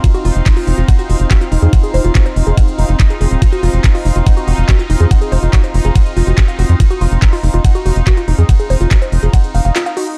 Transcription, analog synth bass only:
0.25 0.31 F1 loud
0.36 0.41 F1 medium
0.67 0.73 F1 loud
0.78 0.84 F1 medium
1.10 1.15 F1 loud
1.20 1.26 F1 medium
1.52 1.58 F1 loud
1.62 1.68 F2 medium
1.94 2.00 F1 loud
2.05 2.10 F1 medium
2.36 2.42 F1 loud
2.47 2.53 F1 medium
2.79 2.84 F1 medium
2.89 2.95 F1 medium
3.21 3.27 F1 loud
3.31 3.37 D#1 medium
3.63 3.69 F1 loud
3.74 3.79 F1 medium
4.05 4.11 F1 loud
4.16 4.22 F1 medium
4.48 4.53 F1 loud
4.58 4.64 F1 medium
4.90 4.96 F1 loud
5.00 5.06 F2 medium
5.32 5.38 F1 loud
5.43 5.49 F1 medium
5.74 5.80 F1 loud
5.85 5.91 F1 medium
6.17 6.22 F1 medium
6.27 6.33 F1 medium
6.59 6.65 F1 medium
6.69 6.75 F2 medium
7.01 7.07 F1 loud
7.12 7.18 F1 medium
7.43 7.49 F1 loud
7.54 7.60 F1 medium
7.86 7.91 F1 medium
7.96 8.02 F1 medium
8.28 8.34 F1 loud
8.38 8.44 F2 medium
8.70 8.76 F1 loud
8.81 8.87 F1 medium
9.12 9.18 F1 loud
9.23 9.29 F1 medium
9.55 9.60 F1 loud
9.65 9.71 F1 medium

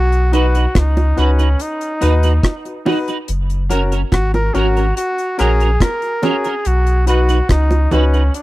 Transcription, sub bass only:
0.00 0.67 B1 medium
0.76 1.13 C#2 medium
1.18 1.56 C#2 medium
2.03 2.40 D#2 medium
3.29 4.04 F#1 medium
4.13 4.50 G#1 medium
4.55 4.93 G#1 medium
5.40 5.77 A#1 loud
6.66 7.41 B1 medium
7.50 7.88 C#2 medium
7.93 8.30 C#2 medium

